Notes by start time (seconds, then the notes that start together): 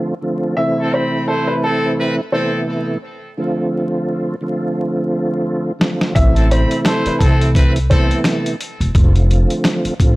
Already playing: D3 F3 A3 C4 F4
0.21 D3 F3 A3 C4 F4
0.57 C3 E3 A3 C4 E4 E5
0.80 C4 A4
0.94 C4 C5 B5
1.27 A3 E4 A4 C5
1.47 B4
1.63 C4 A4
1.98 C4 B4
2.32 C3 E3 A3 B3 C4 E4 A4 C5
3.37 D3 F3 A3 C4 F4
4.41 D3 F3 A3 C4 F4
5.79 D3 F3 A3 C4 F4, snare
6.01 snare
6.14 A1 C3 E3 A3 C4 E4 E5, kick, closed hi-hat
6.35 C4 A4, closed hi-hat
6.49 C4 C5 B5, closed hi-hat
6.71 closed hi-hat
6.85 A3 E4 A4 C5, snare, closed hi-hat
7.06 B4, muted upright bass stroke, closed hi-hat
7.19 C2 C4 A4, kick, closed hi-hat
7.41 closed hi-hat
7.55 C4 B4, kick, closed hi-hat
7.76 closed hi-hat
7.90 C3 E3 A3 B3 C4 E4 A4 C5, kick, closed hi-hat
8.11 closed hi-hat
8.24 snare, closed hi-hat
8.46 closed hi-hat
8.61 closed hi-hat
8.80 E1, closed hi-hat
8.95 F1 D3 F3 A3 C4 F4, kick, closed hi-hat
9.16 closed hi-hat
9.31 closed hi-hat
9.50 closed hi-hat
9.64 snare, closed hi-hat
9.85 muted upright bass stroke, closed hi-hat
9.99 A1 D3 F3 A3 C4 F4, kick, closed hi-hat